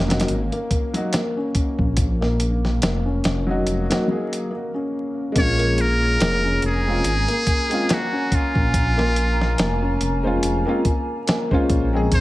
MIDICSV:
0, 0, Header, 1, 8, 480
1, 0, Start_track
1, 0, Key_signature, -5, "minor"
1, 0, Tempo, 845070
1, 1125, Time_signature, 4, 2, 24, 8
1, 6932, End_track
2, 0, Start_track
2, 0, Title_t, "Ambient pad"
2, 0, Program_c, 0, 92
2, 3044, Note_on_c, 0, 70, 79
2, 3046, Note_on_c, 0, 82, 91
2, 3048, Note_on_c, 0, 80, 74
2, 6862, Note_off_c, 0, 82, 0
2, 6863, Note_off_c, 0, 80, 0
2, 6882, Note_on_c, 0, 87, 92
2, 6884, Note_on_c, 0, 75, 75
2, 6932, Note_off_c, 0, 70, 0
2, 6932, Note_off_c, 0, 75, 0
2, 6932, Note_off_c, 0, 87, 0
2, 6932, End_track
3, 0, Start_track
3, 0, Title_t, "Muted trumpet"
3, 0, Program_c, 1, 59
3, 3058, Note_on_c, 1, 73, 116
3, 3299, Note_on_c, 1, 70, 107
3, 3308, Note_off_c, 1, 73, 0
3, 3772, Note_off_c, 1, 70, 0
3, 3785, Note_on_c, 1, 68, 105
3, 4507, Note_on_c, 1, 66, 87
3, 4515, Note_off_c, 1, 68, 0
3, 4742, Note_on_c, 1, 65, 93
3, 4750, Note_off_c, 1, 66, 0
3, 5693, Note_off_c, 1, 65, 0
3, 6897, Note_on_c, 1, 72, 113
3, 6932, Note_off_c, 1, 72, 0
3, 6932, End_track
4, 0, Start_track
4, 0, Title_t, "Upright piano"
4, 0, Program_c, 2, 0
4, 48, Note_on_c, 2, 54, 73
4, 54, Note_on_c, 2, 58, 65
4, 62, Note_on_c, 2, 63, 67
4, 69, Note_on_c, 2, 66, 74
4, 176, Note_off_c, 2, 54, 0
4, 179, Note_off_c, 2, 58, 0
4, 183, Note_off_c, 2, 63, 0
4, 187, Note_off_c, 2, 66, 0
4, 531, Note_on_c, 2, 54, 76
4, 538, Note_on_c, 2, 58, 72
4, 543, Note_on_c, 2, 63, 73
4, 553, Note_on_c, 2, 66, 86
4, 658, Note_off_c, 2, 54, 0
4, 661, Note_off_c, 2, 58, 0
4, 664, Note_off_c, 2, 63, 0
4, 669, Note_off_c, 2, 66, 0
4, 1969, Note_on_c, 2, 54, 76
4, 1975, Note_on_c, 2, 58, 73
4, 1984, Note_on_c, 2, 63, 76
4, 1991, Note_on_c, 2, 66, 89
4, 2182, Note_off_c, 2, 54, 0
4, 2185, Note_off_c, 2, 58, 0
4, 2189, Note_off_c, 2, 63, 0
4, 2193, Note_off_c, 2, 66, 0
4, 2214, Note_on_c, 2, 54, 82
4, 2219, Note_on_c, 2, 58, 77
4, 2229, Note_on_c, 2, 63, 83
4, 2236, Note_on_c, 2, 66, 92
4, 2296, Note_off_c, 2, 54, 0
4, 2299, Note_off_c, 2, 58, 0
4, 2304, Note_off_c, 2, 63, 0
4, 2308, Note_off_c, 2, 66, 0
4, 2316, Note_on_c, 2, 54, 78
4, 2321, Note_on_c, 2, 58, 71
4, 2330, Note_on_c, 2, 63, 70
4, 2338, Note_on_c, 2, 68, 82
4, 2560, Note_off_c, 2, 54, 0
4, 2563, Note_off_c, 2, 58, 0
4, 2567, Note_off_c, 2, 63, 0
4, 2571, Note_off_c, 2, 68, 0
4, 3023, Note_on_c, 2, 56, 99
4, 3038, Note_on_c, 2, 58, 94
4, 3052, Note_on_c, 2, 61, 88
4, 3068, Note_on_c, 2, 65, 101
4, 3754, Note_off_c, 2, 56, 0
4, 3761, Note_off_c, 2, 58, 0
4, 3768, Note_off_c, 2, 61, 0
4, 3776, Note_off_c, 2, 65, 0
4, 3897, Note_on_c, 2, 56, 72
4, 3903, Note_on_c, 2, 60, 68
4, 3909, Note_on_c, 2, 61, 70
4, 3917, Note_on_c, 2, 65, 82
4, 4021, Note_off_c, 2, 56, 0
4, 4024, Note_off_c, 2, 60, 0
4, 4027, Note_off_c, 2, 61, 0
4, 4031, Note_off_c, 2, 65, 0
4, 4371, Note_on_c, 2, 56, 82
4, 4379, Note_on_c, 2, 60, 71
4, 4387, Note_on_c, 2, 61, 73
4, 4394, Note_on_c, 2, 65, 91
4, 4498, Note_off_c, 2, 56, 0
4, 4502, Note_off_c, 2, 60, 0
4, 4506, Note_off_c, 2, 61, 0
4, 4509, Note_off_c, 2, 65, 0
4, 5811, Note_on_c, 2, 56, 88
4, 5816, Note_on_c, 2, 72, 79
4, 5826, Note_on_c, 2, 61, 80
4, 5833, Note_on_c, 2, 65, 94
4, 6023, Note_off_c, 2, 56, 0
4, 6025, Note_off_c, 2, 72, 0
4, 6030, Note_off_c, 2, 61, 0
4, 6034, Note_off_c, 2, 65, 0
4, 6051, Note_on_c, 2, 56, 93
4, 6059, Note_on_c, 2, 60, 82
4, 6067, Note_on_c, 2, 61, 78
4, 6072, Note_on_c, 2, 65, 99
4, 6135, Note_off_c, 2, 56, 0
4, 6139, Note_off_c, 2, 60, 0
4, 6143, Note_off_c, 2, 61, 0
4, 6145, Note_off_c, 2, 65, 0
4, 6535, Note_on_c, 2, 56, 93
4, 6542, Note_on_c, 2, 72, 87
4, 6550, Note_on_c, 2, 61, 93
4, 6556, Note_on_c, 2, 65, 104
4, 6745, Note_off_c, 2, 56, 0
4, 6748, Note_off_c, 2, 72, 0
4, 6753, Note_off_c, 2, 61, 0
4, 6755, Note_off_c, 2, 65, 0
4, 6776, Note_on_c, 2, 56, 91
4, 6782, Note_on_c, 2, 60, 78
4, 6790, Note_on_c, 2, 61, 78
4, 6795, Note_on_c, 2, 68, 107
4, 6870, Note_off_c, 2, 56, 0
4, 6873, Note_off_c, 2, 60, 0
4, 6877, Note_off_c, 2, 61, 0
4, 6880, Note_off_c, 2, 68, 0
4, 6932, End_track
5, 0, Start_track
5, 0, Title_t, "Felt piano"
5, 0, Program_c, 3, 0
5, 0, Control_c, 3, 64, 127
5, 0, Note_on_c, 3, 58, 76
5, 0, Note_on_c, 3, 61, 74
5, 285, Note_off_c, 3, 61, 0
5, 299, Note_off_c, 3, 58, 0
5, 299, Note_on_c, 3, 58, 92
5, 631, Note_off_c, 3, 58, 0
5, 640, Note_on_c, 3, 58, 77
5, 764, Note_off_c, 3, 58, 0
5, 777, Note_on_c, 3, 61, 73
5, 1245, Note_off_c, 3, 61, 0
5, 1256, Note_on_c, 3, 58, 91
5, 1592, Note_off_c, 3, 58, 0
5, 1602, Note_on_c, 3, 58, 78
5, 1725, Note_off_c, 3, 58, 0
5, 1736, Note_on_c, 3, 61, 76
5, 2204, Note_off_c, 3, 61, 0
5, 2216, Note_on_c, 3, 58, 91
5, 2551, Note_off_c, 3, 58, 0
5, 2560, Note_on_c, 3, 58, 82
5, 2684, Note_off_c, 3, 58, 0
5, 2693, Note_on_c, 3, 61, 72
5, 3041, Note_off_c, 3, 61, 0
5, 3051, Control_c, 3, 64, 0
5, 3150, Control_c, 3, 64, 127
5, 3174, Note_on_c, 3, 58, 99
5, 3511, Note_off_c, 3, 58, 0
5, 3522, Note_on_c, 3, 58, 86
5, 3645, Note_off_c, 3, 58, 0
5, 3657, Note_on_c, 3, 61, 75
5, 4125, Note_off_c, 3, 61, 0
5, 4137, Note_on_c, 3, 58, 88
5, 4472, Note_off_c, 3, 58, 0
5, 4481, Note_on_c, 3, 58, 79
5, 4604, Note_off_c, 3, 58, 0
5, 4614, Note_on_c, 3, 61, 76
5, 5083, Note_off_c, 3, 61, 0
5, 5098, Note_on_c, 3, 58, 101
5, 5433, Note_off_c, 3, 58, 0
5, 5443, Note_on_c, 3, 58, 86
5, 5565, Note_off_c, 3, 58, 0
5, 5578, Note_on_c, 3, 61, 79
5, 6045, Note_off_c, 3, 61, 0
5, 6057, Note_on_c, 3, 58, 95
5, 6393, Note_off_c, 3, 58, 0
5, 6402, Note_on_c, 3, 58, 85
5, 6525, Note_off_c, 3, 58, 0
5, 6538, Note_on_c, 3, 61, 78
5, 6884, Note_off_c, 3, 61, 0
5, 6890, Control_c, 3, 64, 0
5, 6932, End_track
6, 0, Start_track
6, 0, Title_t, "Synth drone"
6, 0, Program_c, 4, 95
6, 0, Note_on_c, 4, 58, 80
6, 2567, Note_off_c, 4, 58, 0
6, 6932, End_track
7, 0, Start_track
7, 0, Title_t, "Detuned saw bass"
7, 0, Program_c, 5, 39
7, 0, Note_on_c, 5, 29, 90
7, 140, Note_off_c, 5, 29, 0
7, 167, Note_on_c, 5, 32, 96
7, 285, Note_off_c, 5, 32, 0
7, 1018, Note_on_c, 5, 34, 87
7, 1583, Note_off_c, 5, 34, 0
7, 1603, Note_on_c, 5, 29, 96
7, 1819, Note_off_c, 5, 29, 0
7, 1845, Note_on_c, 5, 29, 93
7, 2059, Note_off_c, 5, 29, 0
7, 2084, Note_on_c, 5, 29, 79
7, 2203, Note_off_c, 5, 29, 0
7, 3044, Note_on_c, 5, 34, 96
7, 3504, Note_off_c, 5, 34, 0
7, 3525, Note_on_c, 5, 29, 91
7, 3739, Note_off_c, 5, 29, 0
7, 3768, Note_on_c, 5, 29, 95
7, 3981, Note_off_c, 5, 29, 0
7, 4007, Note_on_c, 5, 32, 95
7, 4125, Note_off_c, 5, 32, 0
7, 4859, Note_on_c, 5, 34, 88
7, 5424, Note_off_c, 5, 34, 0
7, 5445, Note_on_c, 5, 29, 94
7, 5660, Note_off_c, 5, 29, 0
7, 5684, Note_on_c, 5, 29, 95
7, 5899, Note_off_c, 5, 29, 0
7, 5927, Note_on_c, 5, 29, 82
7, 6045, Note_off_c, 5, 29, 0
7, 6645, Note_on_c, 5, 34, 89
7, 6859, Note_off_c, 5, 34, 0
7, 6886, Note_on_c, 5, 34, 96
7, 6932, Note_off_c, 5, 34, 0
7, 6932, End_track
8, 0, Start_track
8, 0, Title_t, "Drums"
8, 0, Note_on_c, 9, 38, 81
8, 55, Note_off_c, 9, 38, 0
8, 57, Note_on_c, 9, 42, 62
8, 64, Note_on_c, 9, 38, 85
8, 112, Note_off_c, 9, 42, 0
8, 112, Note_on_c, 9, 42, 59
8, 118, Note_off_c, 9, 38, 0
8, 118, Note_on_c, 9, 38, 80
8, 161, Note_off_c, 9, 42, 0
8, 161, Note_on_c, 9, 42, 80
8, 175, Note_off_c, 9, 38, 0
8, 218, Note_off_c, 9, 42, 0
8, 297, Note_on_c, 9, 42, 40
8, 354, Note_off_c, 9, 42, 0
8, 401, Note_on_c, 9, 36, 87
8, 401, Note_on_c, 9, 42, 64
8, 458, Note_off_c, 9, 36, 0
8, 458, Note_off_c, 9, 42, 0
8, 536, Note_on_c, 9, 42, 42
8, 592, Note_off_c, 9, 42, 0
8, 640, Note_on_c, 9, 42, 83
8, 646, Note_on_c, 9, 38, 112
8, 696, Note_off_c, 9, 42, 0
8, 703, Note_off_c, 9, 38, 0
8, 879, Note_on_c, 9, 42, 66
8, 880, Note_on_c, 9, 36, 89
8, 935, Note_off_c, 9, 42, 0
8, 937, Note_off_c, 9, 36, 0
8, 1015, Note_on_c, 9, 36, 85
8, 1072, Note_off_c, 9, 36, 0
8, 1117, Note_on_c, 9, 42, 83
8, 1120, Note_on_c, 9, 36, 109
8, 1174, Note_off_c, 9, 42, 0
8, 1177, Note_off_c, 9, 36, 0
8, 1263, Note_on_c, 9, 38, 40
8, 1320, Note_off_c, 9, 38, 0
8, 1362, Note_on_c, 9, 42, 66
8, 1419, Note_off_c, 9, 42, 0
8, 1504, Note_on_c, 9, 38, 39
8, 1561, Note_off_c, 9, 38, 0
8, 1601, Note_on_c, 9, 42, 91
8, 1608, Note_on_c, 9, 38, 120
8, 1658, Note_off_c, 9, 42, 0
8, 1665, Note_off_c, 9, 38, 0
8, 1840, Note_on_c, 9, 42, 71
8, 1847, Note_on_c, 9, 38, 103
8, 1897, Note_off_c, 9, 42, 0
8, 1904, Note_off_c, 9, 38, 0
8, 2082, Note_on_c, 9, 42, 58
8, 2139, Note_off_c, 9, 42, 0
8, 2219, Note_on_c, 9, 42, 72
8, 2226, Note_on_c, 9, 38, 95
8, 2276, Note_off_c, 9, 42, 0
8, 2282, Note_off_c, 9, 38, 0
8, 2458, Note_on_c, 9, 42, 58
8, 2515, Note_off_c, 9, 42, 0
8, 3042, Note_on_c, 9, 36, 107
8, 3043, Note_on_c, 9, 42, 80
8, 3099, Note_off_c, 9, 36, 0
8, 3099, Note_off_c, 9, 42, 0
8, 3178, Note_on_c, 9, 42, 42
8, 3235, Note_off_c, 9, 42, 0
8, 3283, Note_on_c, 9, 42, 67
8, 3340, Note_off_c, 9, 42, 0
8, 3524, Note_on_c, 9, 42, 94
8, 3531, Note_on_c, 9, 38, 127
8, 3581, Note_off_c, 9, 42, 0
8, 3587, Note_off_c, 9, 38, 0
8, 3762, Note_on_c, 9, 42, 69
8, 3819, Note_off_c, 9, 42, 0
8, 4001, Note_on_c, 9, 42, 84
8, 4058, Note_off_c, 9, 42, 0
8, 4137, Note_on_c, 9, 42, 41
8, 4194, Note_off_c, 9, 42, 0
8, 4241, Note_on_c, 9, 42, 66
8, 4242, Note_on_c, 9, 36, 89
8, 4298, Note_off_c, 9, 42, 0
8, 4299, Note_off_c, 9, 36, 0
8, 4378, Note_on_c, 9, 42, 43
8, 4435, Note_off_c, 9, 42, 0
8, 4483, Note_on_c, 9, 42, 90
8, 4489, Note_on_c, 9, 38, 118
8, 4539, Note_off_c, 9, 42, 0
8, 4546, Note_off_c, 9, 38, 0
8, 4723, Note_on_c, 9, 36, 94
8, 4725, Note_on_c, 9, 42, 63
8, 4780, Note_off_c, 9, 36, 0
8, 4781, Note_off_c, 9, 42, 0
8, 4858, Note_on_c, 9, 36, 89
8, 4915, Note_off_c, 9, 36, 0
8, 4963, Note_on_c, 9, 36, 106
8, 4964, Note_on_c, 9, 42, 92
8, 5020, Note_off_c, 9, 36, 0
8, 5021, Note_off_c, 9, 42, 0
8, 5107, Note_on_c, 9, 38, 48
8, 5163, Note_off_c, 9, 38, 0
8, 5205, Note_on_c, 9, 42, 66
8, 5262, Note_off_c, 9, 42, 0
8, 5347, Note_on_c, 9, 38, 40
8, 5404, Note_off_c, 9, 38, 0
8, 5443, Note_on_c, 9, 42, 95
8, 5450, Note_on_c, 9, 38, 121
8, 5500, Note_off_c, 9, 42, 0
8, 5506, Note_off_c, 9, 38, 0
8, 5684, Note_on_c, 9, 42, 69
8, 5741, Note_off_c, 9, 42, 0
8, 5923, Note_on_c, 9, 42, 82
8, 5980, Note_off_c, 9, 42, 0
8, 6162, Note_on_c, 9, 42, 67
8, 6163, Note_on_c, 9, 36, 89
8, 6219, Note_off_c, 9, 42, 0
8, 6220, Note_off_c, 9, 36, 0
8, 6404, Note_on_c, 9, 42, 94
8, 6411, Note_on_c, 9, 38, 121
8, 6461, Note_off_c, 9, 42, 0
8, 6468, Note_off_c, 9, 38, 0
8, 6539, Note_on_c, 9, 36, 92
8, 6595, Note_off_c, 9, 36, 0
8, 6643, Note_on_c, 9, 36, 95
8, 6643, Note_on_c, 9, 42, 66
8, 6700, Note_off_c, 9, 36, 0
8, 6700, Note_off_c, 9, 42, 0
8, 6882, Note_on_c, 9, 42, 86
8, 6883, Note_on_c, 9, 36, 113
8, 6932, Note_off_c, 9, 36, 0
8, 6932, Note_off_c, 9, 42, 0
8, 6932, End_track
0, 0, End_of_file